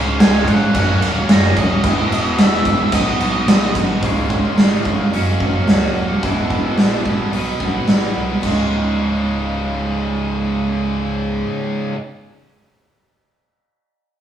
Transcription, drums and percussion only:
0.20 snare loud
0.20 crash medium
0.48 kick medium
0.48 crash medium
0.75 kick loud
0.75 crash medium
1.02 crash medium
1.29 snare loud
1.29 crash medium
1.57 kick medium
1.57 crash medium
1.84 kick loud
1.84 crash medium
2.12 crash medium
2.38 snare loud
2.38 crash medium
2.65 kick medium
2.65 crash medium
2.92 kick loud
2.92 crash medium
3.20 crash medium
3.48 snare loud
3.48 crash medium
3.75 kick medium
3.75 crash medium
4.03 kick medium
4.03 open hi-hat soft
4.30 kick medium
4.58 snare loud
4.58 open hi-hat soft
4.85 kick medium
5.13 open hi-hat soft
5.40 kick medium
5.68 snare medium
5.68 open hi-hat soft
6.23 kick medium
6.23 open hi-hat soft
6.50 kick medium
6.78 snare medium
6.78 open hi-hat soft
7.06 kick medium
7.33 open hi-hat soft
7.60 kick medium
7.88 snare medium
7.88 open hi-hat soft
8.43 kick medium
8.43 crash medium

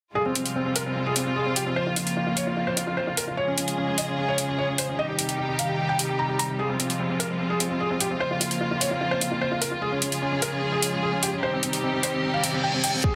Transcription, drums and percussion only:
0.35 closed hi-hat medium
0.46 closed hi-hat soft
0.76 closed hi-hat medium
1.16 closed hi-hat medium
1.56 closed hi-hat medium
1.96 closed hi-hat medium
2.07 closed hi-hat soft
2.37 closed hi-hat medium
2.77 closed hi-hat medium
3.17 closed hi-hat medium
3.58 closed hi-hat medium
3.68 closed hi-hat soft
3.98 closed hi-hat medium
4.38 closed hi-hat medium
4.78 closed hi-hat medium
5.19 closed hi-hat medium
5.29 closed hi-hat soft
5.59 closed hi-hat medium
5.99 closed hi-hat medium
6.39 closed hi-hat medium
6.80 closed hi-hat medium
6.90 closed hi-hat soft
7.20 closed hi-hat medium
7.60 closed hi-hat medium
8.00 closed hi-hat medium
8.41 closed hi-hat medium
8.51 closed hi-hat soft
8.81 closed hi-hat medium
9.21 closed hi-hat medium
9.62 closed hi-hat medium
10.02 closed hi-hat medium
10.12 closed hi-hat soft
10.42 closed hi-hat medium
10.82 closed hi-hat medium
11.23 closed hi-hat medium
11.63 closed hi-hat medium
11.73 closed hi-hat soft
12.03 closed hi-hat medium
12.44 closed hi-hat medium
12.84 closed hi-hat medium
13.04 kick medium

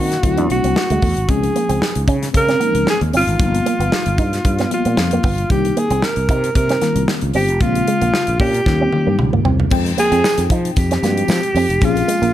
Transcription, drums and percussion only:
0.12 snare soft
0.12 closed hi-hat medium
0.23 kick medium
0.23 closed hi-hat medium
0.38 closed hi-hat medium
0.50 closed hi-hat medium
0.64 closed hi-hat medium
0.76 snare loud
0.90 closed hi-hat medium
1.02 kick medium
1.02 open hi-hat medium
1.17 closed hi-hat soft
1.29 kick loud
1.29 closed hi-hat medium
1.43 closed hi-hat medium
1.56 closed hi-hat medium
1.69 closed hi-hat medium
1.82 snare loud
1.95 closed hi-hat soft
2.08 kick medium
2.08 closed hi-hat medium
2.22 snare soft
2.22 closed hi-hat medium
2.34 kick medium
2.34 closed hi-hat medium
2.48 snare soft
2.48 closed hi-hat soft
2.61 closed hi-hat medium
2.75 closed hi-hat soft
2.87 snare loud
3.01 closed hi-hat soft
3.13 open hi-hat medium
3.28 closed hi-hat soft
3.40 kick loud
3.40 closed hi-hat medium
3.55 closed hi-hat medium
3.66 closed hi-hat medium
3.80 closed hi-hat soft
3.92 snare loud
4.06 closed hi-hat medium
4.18 kick medium
4.18 closed hi-hat medium
4.33 snare soft
4.33 closed hi-hat medium
4.45 kick medium
4.45 closed hi-hat medium
4.59 snare soft
4.59 closed hi-hat soft
4.71 closed hi-hat medium
4.85 closed hi-hat soft
4.97 snare loud
5.11 closed hi-hat medium
5.23 kick medium
5.23 open hi-hat medium
5.38 closed hi-hat soft
5.50 kick loud
5.50 closed hi-hat medium
5.65 closed hi-hat medium
5.77 closed hi-hat medium
5.90 closed hi-hat medium
6.02 snare loud
6.16 closed hi-hat soft
6.29 kick medium
6.29 closed hi-hat medium
6.44 closed hi-hat medium
6.55 kick medium
6.55 closed hi-hat medium
6.69 snare soft
6.69 closed hi-hat soft
6.81 snare soft
6.81 closed hi-hat medium
6.96 closed hi-hat medium
7.08 snare loud
7.21 closed hi-hat medium
7.34 open hi-hat medium
7.48 closed hi-hat soft
7.61 kick loud
7.61 closed hi-hat medium
7.75 closed hi-hat medium
7.88 closed hi-hat medium
8.02 closed hi-hat soft
8.14 snare medium
8.27 closed hi-hat soft
8.40 kick loud
8.40 open hi-hat medium
8.54 closed hi-hat medium
8.66 kick medium
8.66 snare soft
8.93 high tom medium
9.19 mid tom medium
9.33 mid tom medium
9.45 floor tom medium
9.60 floor tom medium
9.70 kick loud
9.70 crash medium
9.70 tambourine soft
9.85 closed hi-hat medium
9.85 tambourine soft
9.98 closed hi-hat medium
9.98 tambourine soft
10.12 closed hi-hat soft
10.12 tambourine soft
10.24 snare loud
10.24 tambourine medium
10.38 closed hi-hat medium
10.38 tambourine soft
10.50 kick loud
10.50 closed hi-hat medium
10.65 closed hi-hat medium
10.76 kick medium
10.76 closed hi-hat medium
10.76 tambourine medium
10.91 snare soft
10.91 closed hi-hat soft
11.03 snare soft
11.03 closed hi-hat medium
11.03 tambourine soft
11.18 closed hi-hat medium
11.28 snare loud
11.28 tambourine medium
11.43 closed hi-hat medium
11.55 open hi-hat medium
11.55 tambourine soft
11.70 closed hi-hat soft
11.70 tambourine soft
11.81 kick loud
11.81 closed hi-hat medium
11.81 tambourine soft
11.95 closed hi-hat medium
11.95 tambourine soft
12.08 closed hi-hat medium
12.08 tambourine soft
12.22 closed hi-hat soft
12.22 tambourine soft

